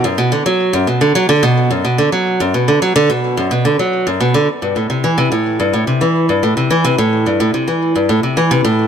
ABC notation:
X:1
M:4/4
L:1/16
Q:1/4=108
K:Ador
V:1 name="Steel-string acoustic guitar" clef=bass
F,, B,, D, F,2 F,, B,, D, F, D, B,,2 F,, B,, D, F,- | F, F,, B,, D, F, D, B,,2 F,, B,, D, F,2 F,, B,, D, | z G,, A,, C, E, C, A,,2 G,, A,, C, E,2 G,, A,, C, | E, C, A,,2 G,, A,, C, E,2 G,, A,, C, E, C, A,,2 |]